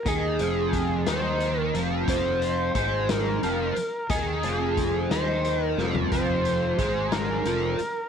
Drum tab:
HH |x-x-x-x-x-x-|x-x-x-x-x-x-|x-x-x-x-x---|x-x-x-x-x-x-|
SD |------o-----|------o-----|------o---o-|------o-----|
FT |------------|------------|-----------o|------------|
BD |o---o-------|o---o-------|o---o-------|o---o-------|